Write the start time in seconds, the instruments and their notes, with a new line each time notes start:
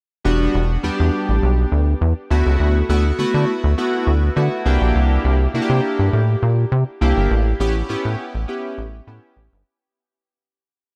0.24 analog synth bass E1, analog polysynth G3 B3 D4 F#4
0.54 analog synth bass E1
0.83 analog synth bass E2, analog polysynth G3 B3 D4 G4
1.00 analog synth bass E2
1.29 analog synth bass A1
1.43 analog synth bass B1
1.72 analog synth bass D2
2.01 analog synth bass E2
2.30 analog synth bass D2, analog polysynth A3 B3 E4 F#4
2.46 analog synth bass C#2
2.60 analog synth bass D2
2.89 analog synth bass D2, analog polysynth A3 B3 E4 F#4
3.19 analog synth bass D3, analog polysynth A3 B3 E4 F#4
3.34 analog synth bass D3
3.64 analog synth bass D2
3.78 analog polysynth A3 B3 E4 F#4
4.07 analog synth bass D2
4.36 analog synth bass D3, analog polysynth A3 B3 E4 F#4
4.65 analog synth bass C2, analog polysynth A#3 D4 E4 G4
4.81 analog synth bass A#1
4.95 analog synth bass C2
5.25 analog synth bass C2
5.54 analog synth bass C3, analog polysynth A#3 D4 E4 F#4
5.62 analog polysynth G4
5.70 analog synth bass C3
5.99 analog synth bass G2
6.13 analog synth bass A2
6.43 analog synth bass A#2
6.72 analog synth bass C3
7.01 analog synth bass C2, analog polysynth A#3 D4 E4 G4
7.17 analog synth bass G1
7.31 analog synth bass A1
7.60 analog synth bass A1, analog polysynth B3 C#4 E4 G4
7.89 analog synth bass A2, analog polysynth B3 C#4 E4 G4
8.05 analog synth bass A2
8.35 analog synth bass A1
8.48 analog polysynth B3 C#4 E4 G4
8.78 analog synth bass A1
9.07 analog synth bass A2, analog polysynth B3 C#4 E4 G4
9.37 analog synth bass A1
9.53 analog synth bass G1